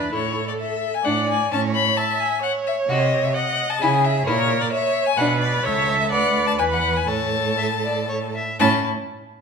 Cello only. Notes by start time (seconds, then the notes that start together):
0.12 A2
1.04 A2
1.51 A2
2.88 C3
3.81 C#3
4.27 A#2
5.18 B2
5.65 C#2
6.12 D2
6.59 E2
7.08 A2
8.60 A2